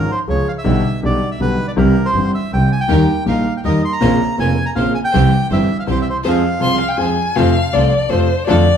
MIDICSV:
0, 0, Header, 1, 6, 480
1, 0, Start_track
1, 0, Key_signature, -4, "minor"
1, 0, Tempo, 372671
1, 845, Time_signature, 3, 2, 24, 8
1, 11300, End_track
2, 0, Start_track
2, 0, Title_t, "Violin"
2, 0, Program_c, 0, 40
2, 8527, Note_on_c, 0, 84, 80
2, 8752, Note_off_c, 0, 84, 0
2, 8760, Note_on_c, 0, 77, 64
2, 8865, Note_on_c, 0, 79, 67
2, 8884, Note_off_c, 0, 77, 0
2, 8977, Note_on_c, 0, 80, 68
2, 8996, Note_off_c, 0, 79, 0
2, 9475, Note_on_c, 0, 77, 83
2, 9495, Note_off_c, 0, 80, 0
2, 9963, Note_on_c, 0, 74, 73
2, 9982, Note_off_c, 0, 77, 0
2, 10435, Note_on_c, 0, 72, 73
2, 10454, Note_off_c, 0, 74, 0
2, 10909, Note_off_c, 0, 72, 0
2, 10916, Note_on_c, 0, 74, 84
2, 11300, Note_off_c, 0, 74, 0
2, 11300, End_track
3, 0, Start_track
3, 0, Title_t, "Bandoneon"
3, 0, Program_c, 1, 23
3, 0, Note_on_c, 1, 70, 70
3, 146, Note_on_c, 1, 72, 63
3, 147, Note_off_c, 1, 70, 0
3, 250, Note_off_c, 1, 72, 0
3, 384, Note_on_c, 1, 73, 65
3, 621, Note_off_c, 1, 73, 0
3, 623, Note_on_c, 1, 77, 69
3, 673, Note_off_c, 1, 77, 0
3, 749, Note_on_c, 1, 76, 73
3, 1296, Note_off_c, 1, 76, 0
3, 1357, Note_on_c, 1, 74, 75
3, 1676, Note_off_c, 1, 74, 0
3, 1692, Note_on_c, 1, 76, 61
3, 1811, Note_off_c, 1, 76, 0
3, 1820, Note_on_c, 1, 71, 77
3, 2147, Note_off_c, 1, 71, 0
3, 2158, Note_on_c, 1, 74, 72
3, 2213, Note_off_c, 1, 74, 0
3, 2290, Note_on_c, 1, 70, 68
3, 2647, Note_on_c, 1, 72, 69
3, 2658, Note_off_c, 1, 70, 0
3, 2982, Note_off_c, 1, 72, 0
3, 3021, Note_on_c, 1, 76, 71
3, 3239, Note_off_c, 1, 76, 0
3, 3264, Note_on_c, 1, 79, 76
3, 3481, Note_off_c, 1, 79, 0
3, 3505, Note_on_c, 1, 80, 69
3, 3610, Note_off_c, 1, 80, 0
3, 3612, Note_on_c, 1, 79, 84
3, 4173, Note_off_c, 1, 79, 0
3, 4233, Note_on_c, 1, 77, 76
3, 4560, Note_off_c, 1, 77, 0
3, 4599, Note_on_c, 1, 79, 64
3, 4648, Note_off_c, 1, 79, 0
3, 4703, Note_on_c, 1, 75, 81
3, 4923, Note_off_c, 1, 75, 0
3, 4958, Note_on_c, 1, 84, 77
3, 5056, Note_on_c, 1, 82, 87
3, 5059, Note_off_c, 1, 84, 0
3, 5613, Note_off_c, 1, 82, 0
3, 5666, Note_on_c, 1, 80, 85
3, 5995, Note_off_c, 1, 80, 0
3, 6000, Note_on_c, 1, 82, 76
3, 6057, Note_off_c, 1, 82, 0
3, 6126, Note_on_c, 1, 77, 75
3, 6352, Note_off_c, 1, 77, 0
3, 6374, Note_on_c, 1, 80, 77
3, 6427, Note_off_c, 1, 80, 0
3, 6498, Note_on_c, 1, 79, 91
3, 7052, Note_off_c, 1, 79, 0
3, 7117, Note_on_c, 1, 76, 79
3, 7439, Note_off_c, 1, 76, 0
3, 7468, Note_on_c, 1, 77, 72
3, 7518, Note_off_c, 1, 77, 0
3, 7611, Note_on_c, 1, 72, 76
3, 7713, Note_off_c, 1, 72, 0
3, 7751, Note_on_c, 1, 76, 70
3, 7833, Note_off_c, 1, 76, 0
3, 7857, Note_on_c, 1, 72, 69
3, 7954, Note_off_c, 1, 72, 0
3, 8100, Note_on_c, 1, 77, 74
3, 8985, Note_off_c, 1, 77, 0
3, 11300, End_track
4, 0, Start_track
4, 0, Title_t, "String section"
4, 0, Program_c, 2, 48
4, 3716, Note_on_c, 2, 63, 60
4, 3720, Note_on_c, 2, 67, 57
4, 3730, Note_on_c, 2, 70, 64
4, 3927, Note_off_c, 2, 63, 0
4, 3928, Note_off_c, 2, 67, 0
4, 3933, Note_off_c, 2, 70, 0
4, 4213, Note_on_c, 2, 70, 48
4, 4214, Note_on_c, 2, 67, 41
4, 4216, Note_on_c, 2, 63, 45
4, 4416, Note_off_c, 2, 70, 0
4, 4417, Note_off_c, 2, 67, 0
4, 4418, Note_off_c, 2, 63, 0
4, 4696, Note_on_c, 2, 70, 49
4, 4697, Note_on_c, 2, 63, 42
4, 4702, Note_on_c, 2, 67, 43
4, 4897, Note_off_c, 2, 70, 0
4, 4898, Note_off_c, 2, 63, 0
4, 4901, Note_off_c, 2, 67, 0
4, 5169, Note_on_c, 2, 70, 55
4, 5173, Note_on_c, 2, 61, 65
4, 5177, Note_on_c, 2, 72, 74
4, 5374, Note_off_c, 2, 70, 0
4, 5375, Note_off_c, 2, 61, 0
4, 5378, Note_off_c, 2, 72, 0
4, 5665, Note_on_c, 2, 70, 42
4, 5668, Note_on_c, 2, 61, 48
4, 5670, Note_on_c, 2, 72, 49
4, 5861, Note_off_c, 2, 70, 0
4, 5863, Note_off_c, 2, 61, 0
4, 5863, Note_off_c, 2, 72, 0
4, 6136, Note_on_c, 2, 61, 47
4, 6137, Note_on_c, 2, 70, 43
4, 6138, Note_on_c, 2, 72, 51
4, 6335, Note_off_c, 2, 61, 0
4, 6336, Note_off_c, 2, 70, 0
4, 6336, Note_off_c, 2, 72, 0
4, 6608, Note_on_c, 2, 64, 68
4, 6616, Note_on_c, 2, 67, 64
4, 6616, Note_on_c, 2, 72, 69
4, 6811, Note_off_c, 2, 64, 0
4, 6814, Note_off_c, 2, 67, 0
4, 6815, Note_off_c, 2, 72, 0
4, 7094, Note_on_c, 2, 64, 47
4, 7096, Note_on_c, 2, 72, 54
4, 7097, Note_on_c, 2, 67, 46
4, 7293, Note_off_c, 2, 64, 0
4, 7294, Note_off_c, 2, 72, 0
4, 7295, Note_off_c, 2, 67, 0
4, 7565, Note_on_c, 2, 72, 52
4, 7568, Note_on_c, 2, 67, 43
4, 7570, Note_on_c, 2, 64, 47
4, 7768, Note_off_c, 2, 72, 0
4, 7770, Note_off_c, 2, 67, 0
4, 7771, Note_off_c, 2, 64, 0
4, 8036, Note_on_c, 2, 65, 65
4, 8041, Note_on_c, 2, 68, 59
4, 8044, Note_on_c, 2, 72, 78
4, 8244, Note_off_c, 2, 65, 0
4, 8246, Note_off_c, 2, 68, 0
4, 8248, Note_off_c, 2, 72, 0
4, 8522, Note_on_c, 2, 65, 45
4, 8529, Note_on_c, 2, 68, 45
4, 8530, Note_on_c, 2, 72, 51
4, 8727, Note_off_c, 2, 65, 0
4, 8731, Note_off_c, 2, 68, 0
4, 8731, Note_off_c, 2, 72, 0
4, 9014, Note_on_c, 2, 65, 46
4, 9017, Note_on_c, 2, 68, 39
4, 9023, Note_on_c, 2, 72, 53
4, 9215, Note_off_c, 2, 65, 0
4, 9217, Note_off_c, 2, 68, 0
4, 9220, Note_off_c, 2, 72, 0
4, 9490, Note_on_c, 2, 65, 70
4, 9495, Note_on_c, 2, 69, 62
4, 9500, Note_on_c, 2, 72, 72
4, 9694, Note_off_c, 2, 65, 0
4, 9696, Note_off_c, 2, 69, 0
4, 9699, Note_off_c, 2, 72, 0
4, 9971, Note_on_c, 2, 69, 47
4, 9976, Note_on_c, 2, 65, 52
4, 9976, Note_on_c, 2, 72, 55
4, 10174, Note_off_c, 2, 69, 0
4, 10176, Note_off_c, 2, 65, 0
4, 10176, Note_off_c, 2, 72, 0
4, 10447, Note_on_c, 2, 65, 48
4, 10448, Note_on_c, 2, 69, 43
4, 10454, Note_on_c, 2, 72, 54
4, 10651, Note_off_c, 2, 65, 0
4, 10651, Note_off_c, 2, 69, 0
4, 10654, Note_off_c, 2, 72, 0
4, 10917, Note_on_c, 2, 62, 69
4, 10921, Note_on_c, 2, 69, 77
4, 10922, Note_on_c, 2, 65, 61
4, 11124, Note_off_c, 2, 62, 0
4, 11126, Note_off_c, 2, 65, 0
4, 11126, Note_off_c, 2, 69, 0
4, 11300, End_track
5, 0, Start_track
5, 0, Title_t, "Grand piano"
5, 0, Program_c, 3, 0
5, 358, Note_on_c, 3, 53, 42
5, 360, Note_on_c, 3, 56, 36
5, 361, Note_on_c, 3, 61, 35
5, 363, Note_on_c, 3, 68, 43
5, 366, Note_on_c, 3, 49, 48
5, 369, Note_on_c, 3, 37, 46
5, 563, Note_off_c, 3, 53, 0
5, 564, Note_off_c, 3, 56, 0
5, 565, Note_off_c, 3, 61, 0
5, 566, Note_off_c, 3, 68, 0
5, 567, Note_off_c, 3, 49, 0
5, 569, Note_off_c, 3, 37, 0
5, 826, Note_on_c, 3, 35, 73
5, 829, Note_on_c, 3, 47, 69
5, 829, Note_on_c, 3, 67, 69
5, 831, Note_on_c, 3, 59, 60
5, 833, Note_on_c, 3, 55, 54
5, 834, Note_on_c, 3, 50, 62
5, 1037, Note_off_c, 3, 35, 0
5, 1039, Note_off_c, 3, 47, 0
5, 1039, Note_off_c, 3, 59, 0
5, 1039, Note_off_c, 3, 67, 0
5, 1040, Note_off_c, 3, 55, 0
5, 1041, Note_off_c, 3, 50, 0
5, 1321, Note_on_c, 3, 50, 39
5, 1324, Note_on_c, 3, 47, 50
5, 1324, Note_on_c, 3, 67, 46
5, 1325, Note_on_c, 3, 35, 43
5, 1326, Note_on_c, 3, 55, 35
5, 1331, Note_on_c, 3, 59, 36
5, 1524, Note_off_c, 3, 50, 0
5, 1525, Note_off_c, 3, 47, 0
5, 1526, Note_off_c, 3, 35, 0
5, 1526, Note_off_c, 3, 67, 0
5, 1527, Note_off_c, 3, 55, 0
5, 1529, Note_off_c, 3, 59, 0
5, 1803, Note_on_c, 3, 35, 47
5, 1803, Note_on_c, 3, 50, 42
5, 1803, Note_on_c, 3, 59, 38
5, 1806, Note_on_c, 3, 55, 37
5, 1811, Note_on_c, 3, 47, 50
5, 1811, Note_on_c, 3, 67, 46
5, 2005, Note_off_c, 3, 35, 0
5, 2005, Note_off_c, 3, 50, 0
5, 2005, Note_off_c, 3, 59, 0
5, 2006, Note_off_c, 3, 55, 0
5, 2009, Note_off_c, 3, 47, 0
5, 2009, Note_off_c, 3, 67, 0
5, 2271, Note_on_c, 3, 36, 69
5, 2276, Note_on_c, 3, 52, 68
5, 2276, Note_on_c, 3, 60, 57
5, 2281, Note_on_c, 3, 55, 58
5, 2283, Note_on_c, 3, 48, 75
5, 2286, Note_on_c, 3, 67, 75
5, 2480, Note_off_c, 3, 36, 0
5, 2482, Note_off_c, 3, 52, 0
5, 2482, Note_off_c, 3, 60, 0
5, 2485, Note_off_c, 3, 48, 0
5, 2485, Note_off_c, 3, 55, 0
5, 2487, Note_off_c, 3, 67, 0
5, 2764, Note_on_c, 3, 52, 40
5, 2772, Note_on_c, 3, 55, 37
5, 2774, Note_on_c, 3, 67, 42
5, 2775, Note_on_c, 3, 43, 43
5, 2777, Note_on_c, 3, 31, 45
5, 2778, Note_on_c, 3, 60, 36
5, 2967, Note_off_c, 3, 52, 0
5, 2971, Note_off_c, 3, 55, 0
5, 2972, Note_off_c, 3, 43, 0
5, 2972, Note_off_c, 3, 67, 0
5, 2974, Note_off_c, 3, 31, 0
5, 2974, Note_off_c, 3, 60, 0
5, 3258, Note_on_c, 3, 55, 37
5, 3260, Note_on_c, 3, 52, 38
5, 3265, Note_on_c, 3, 48, 46
5, 3268, Note_on_c, 3, 36, 45
5, 3270, Note_on_c, 3, 60, 36
5, 3273, Note_on_c, 3, 67, 44
5, 3456, Note_off_c, 3, 55, 0
5, 3457, Note_off_c, 3, 52, 0
5, 3459, Note_off_c, 3, 48, 0
5, 3461, Note_off_c, 3, 36, 0
5, 3462, Note_off_c, 3, 60, 0
5, 3463, Note_off_c, 3, 67, 0
5, 3709, Note_on_c, 3, 51, 70
5, 3715, Note_on_c, 3, 55, 54
5, 3716, Note_on_c, 3, 58, 50
5, 3721, Note_on_c, 3, 39, 70
5, 3726, Note_on_c, 3, 67, 63
5, 3926, Note_off_c, 3, 55, 0
5, 3926, Note_off_c, 3, 58, 0
5, 3927, Note_off_c, 3, 51, 0
5, 3929, Note_off_c, 3, 39, 0
5, 3931, Note_off_c, 3, 67, 0
5, 4191, Note_on_c, 3, 55, 33
5, 4194, Note_on_c, 3, 51, 39
5, 4197, Note_on_c, 3, 34, 47
5, 4198, Note_on_c, 3, 58, 34
5, 4198, Note_on_c, 3, 67, 45
5, 4202, Note_on_c, 3, 46, 44
5, 4405, Note_off_c, 3, 55, 0
5, 4407, Note_off_c, 3, 51, 0
5, 4408, Note_off_c, 3, 34, 0
5, 4408, Note_off_c, 3, 67, 0
5, 4409, Note_off_c, 3, 58, 0
5, 4411, Note_off_c, 3, 46, 0
5, 4686, Note_on_c, 3, 51, 46
5, 4692, Note_on_c, 3, 39, 46
5, 4695, Note_on_c, 3, 67, 43
5, 4696, Note_on_c, 3, 55, 36
5, 4699, Note_on_c, 3, 58, 34
5, 4896, Note_off_c, 3, 39, 0
5, 4897, Note_off_c, 3, 55, 0
5, 4897, Note_off_c, 3, 67, 0
5, 4898, Note_off_c, 3, 51, 0
5, 4899, Note_off_c, 3, 58, 0
5, 5159, Note_on_c, 3, 46, 77
5, 5163, Note_on_c, 3, 49, 61
5, 5164, Note_on_c, 3, 34, 71
5, 5166, Note_on_c, 3, 58, 52
5, 5170, Note_on_c, 3, 65, 70
5, 5172, Note_on_c, 3, 60, 58
5, 5369, Note_off_c, 3, 46, 0
5, 5371, Note_off_c, 3, 34, 0
5, 5371, Note_off_c, 3, 49, 0
5, 5372, Note_off_c, 3, 58, 0
5, 5374, Note_off_c, 3, 65, 0
5, 5375, Note_off_c, 3, 60, 0
5, 5634, Note_on_c, 3, 49, 36
5, 5638, Note_on_c, 3, 60, 36
5, 5640, Note_on_c, 3, 58, 35
5, 5645, Note_on_c, 3, 65, 44
5, 5646, Note_on_c, 3, 29, 44
5, 5647, Note_on_c, 3, 41, 42
5, 5846, Note_off_c, 3, 49, 0
5, 5848, Note_off_c, 3, 60, 0
5, 5849, Note_off_c, 3, 58, 0
5, 5851, Note_off_c, 3, 65, 0
5, 5852, Note_off_c, 3, 29, 0
5, 5852, Note_off_c, 3, 41, 0
5, 6124, Note_on_c, 3, 34, 49
5, 6126, Note_on_c, 3, 49, 39
5, 6131, Note_on_c, 3, 46, 45
5, 6132, Note_on_c, 3, 58, 37
5, 6132, Note_on_c, 3, 60, 36
5, 6135, Note_on_c, 3, 65, 45
5, 6329, Note_off_c, 3, 34, 0
5, 6330, Note_off_c, 3, 49, 0
5, 6332, Note_off_c, 3, 46, 0
5, 6333, Note_off_c, 3, 58, 0
5, 6333, Note_off_c, 3, 60, 0
5, 6335, Note_off_c, 3, 65, 0
5, 6618, Note_on_c, 3, 60, 56
5, 6621, Note_on_c, 3, 52, 66
5, 6622, Note_on_c, 3, 36, 75
5, 6622, Note_on_c, 3, 48, 72
5, 6625, Note_on_c, 3, 55, 60
5, 6625, Note_on_c, 3, 67, 74
5, 6816, Note_off_c, 3, 60, 0
5, 6817, Note_off_c, 3, 52, 0
5, 6818, Note_off_c, 3, 36, 0
5, 6818, Note_off_c, 3, 48, 0
5, 6819, Note_off_c, 3, 55, 0
5, 6819, Note_off_c, 3, 67, 0
5, 7088, Note_on_c, 3, 60, 39
5, 7092, Note_on_c, 3, 52, 42
5, 7093, Note_on_c, 3, 43, 45
5, 7093, Note_on_c, 3, 67, 46
5, 7096, Note_on_c, 3, 31, 52
5, 7098, Note_on_c, 3, 55, 38
5, 7290, Note_off_c, 3, 60, 0
5, 7292, Note_off_c, 3, 52, 0
5, 7293, Note_off_c, 3, 43, 0
5, 7293, Note_off_c, 3, 67, 0
5, 7294, Note_off_c, 3, 31, 0
5, 7295, Note_off_c, 3, 55, 0
5, 7559, Note_on_c, 3, 60, 38
5, 7561, Note_on_c, 3, 36, 48
5, 7561, Note_on_c, 3, 55, 36
5, 7562, Note_on_c, 3, 52, 42
5, 7564, Note_on_c, 3, 67, 44
5, 7565, Note_on_c, 3, 48, 49
5, 7765, Note_off_c, 3, 60, 0
5, 7766, Note_off_c, 3, 36, 0
5, 7766, Note_off_c, 3, 55, 0
5, 7767, Note_off_c, 3, 52, 0
5, 7768, Note_off_c, 3, 48, 0
5, 7768, Note_off_c, 3, 67, 0
5, 8046, Note_on_c, 3, 53, 76
5, 8048, Note_on_c, 3, 68, 65
5, 8051, Note_on_c, 3, 60, 56
5, 8055, Note_on_c, 3, 56, 60
5, 8058, Note_on_c, 3, 41, 70
5, 8250, Note_off_c, 3, 68, 0
5, 8251, Note_off_c, 3, 53, 0
5, 8251, Note_off_c, 3, 60, 0
5, 8253, Note_off_c, 3, 56, 0
5, 8255, Note_off_c, 3, 41, 0
5, 8496, Note_on_c, 3, 53, 41
5, 8497, Note_on_c, 3, 56, 35
5, 8497, Note_on_c, 3, 60, 34
5, 8507, Note_on_c, 3, 36, 46
5, 8508, Note_on_c, 3, 48, 47
5, 8508, Note_on_c, 3, 68, 39
5, 8714, Note_off_c, 3, 53, 0
5, 8715, Note_off_c, 3, 56, 0
5, 8715, Note_off_c, 3, 60, 0
5, 8720, Note_off_c, 3, 36, 0
5, 8720, Note_off_c, 3, 48, 0
5, 8720, Note_off_c, 3, 68, 0
5, 8981, Note_on_c, 3, 41, 45
5, 8985, Note_on_c, 3, 53, 46
5, 8985, Note_on_c, 3, 56, 36
5, 8985, Note_on_c, 3, 60, 34
5, 8991, Note_on_c, 3, 68, 42
5, 9199, Note_off_c, 3, 41, 0
5, 9201, Note_off_c, 3, 53, 0
5, 9201, Note_off_c, 3, 56, 0
5, 9201, Note_off_c, 3, 60, 0
5, 9204, Note_off_c, 3, 68, 0
5, 9476, Note_on_c, 3, 48, 71
5, 9480, Note_on_c, 3, 53, 80
5, 9484, Note_on_c, 3, 57, 60
5, 9487, Note_on_c, 3, 41, 77
5, 9488, Note_on_c, 3, 65, 67
5, 9687, Note_off_c, 3, 48, 0
5, 9690, Note_off_c, 3, 57, 0
5, 9691, Note_off_c, 3, 53, 0
5, 9692, Note_off_c, 3, 41, 0
5, 9692, Note_off_c, 3, 65, 0
5, 9954, Note_on_c, 3, 48, 49
5, 9957, Note_on_c, 3, 53, 38
5, 9957, Note_on_c, 3, 65, 48
5, 9959, Note_on_c, 3, 36, 50
5, 9959, Note_on_c, 3, 57, 37
5, 10167, Note_off_c, 3, 53, 0
5, 10167, Note_off_c, 3, 65, 0
5, 10168, Note_off_c, 3, 36, 0
5, 10168, Note_off_c, 3, 57, 0
5, 10170, Note_off_c, 3, 48, 0
5, 10419, Note_on_c, 3, 48, 43
5, 10429, Note_on_c, 3, 53, 52
5, 10431, Note_on_c, 3, 57, 37
5, 10433, Note_on_c, 3, 65, 49
5, 10436, Note_on_c, 3, 41, 53
5, 10637, Note_off_c, 3, 48, 0
5, 10643, Note_off_c, 3, 53, 0
5, 10643, Note_off_c, 3, 57, 0
5, 10644, Note_off_c, 3, 65, 0
5, 10645, Note_off_c, 3, 41, 0
5, 10913, Note_on_c, 3, 53, 78
5, 10915, Note_on_c, 3, 50, 69
5, 10917, Note_on_c, 3, 57, 66
5, 10922, Note_on_c, 3, 65, 71
5, 10923, Note_on_c, 3, 41, 80
5, 11123, Note_off_c, 3, 50, 0
5, 11123, Note_off_c, 3, 53, 0
5, 11124, Note_off_c, 3, 57, 0
5, 11126, Note_off_c, 3, 65, 0
5, 11127, Note_off_c, 3, 41, 0
5, 11300, End_track
6, 0, Start_track
6, 0, Title_t, "Double bass"
6, 0, Program_c, 4, 43
6, 362, Note_on_c, 4, 37, 52
6, 565, Note_off_c, 4, 37, 0
6, 839, Note_on_c, 4, 35, 74
6, 1043, Note_off_c, 4, 35, 0
6, 1329, Note_on_c, 4, 35, 54
6, 1528, Note_off_c, 4, 35, 0
6, 1794, Note_on_c, 4, 35, 53
6, 2001, Note_off_c, 4, 35, 0
6, 2290, Note_on_c, 4, 36, 78
6, 2489, Note_off_c, 4, 36, 0
6, 2762, Note_on_c, 4, 31, 46
6, 2966, Note_off_c, 4, 31, 0
6, 3255, Note_on_c, 4, 36, 54
6, 3454, Note_off_c, 4, 36, 0
6, 3728, Note_on_c, 4, 39, 74
6, 3932, Note_off_c, 4, 39, 0
6, 4212, Note_on_c, 4, 34, 50
6, 4416, Note_off_c, 4, 34, 0
6, 4691, Note_on_c, 4, 39, 53
6, 4895, Note_off_c, 4, 39, 0
6, 5171, Note_on_c, 4, 34, 76
6, 5375, Note_off_c, 4, 34, 0
6, 5661, Note_on_c, 4, 29, 56
6, 5859, Note_off_c, 4, 29, 0
6, 6130, Note_on_c, 4, 34, 55
6, 6332, Note_off_c, 4, 34, 0
6, 6617, Note_on_c, 4, 36, 80
6, 6815, Note_off_c, 4, 36, 0
6, 7102, Note_on_c, 4, 31, 56
6, 7297, Note_off_c, 4, 31, 0
6, 7576, Note_on_c, 4, 36, 56
6, 7774, Note_off_c, 4, 36, 0
6, 9496, Note_on_c, 4, 41, 81
6, 9697, Note_off_c, 4, 41, 0
6, 9976, Note_on_c, 4, 36, 56
6, 10176, Note_off_c, 4, 36, 0
6, 10456, Note_on_c, 4, 41, 60
6, 10655, Note_off_c, 4, 41, 0
6, 10938, Note_on_c, 4, 41, 87
6, 11134, Note_off_c, 4, 41, 0
6, 11300, End_track
0, 0, End_of_file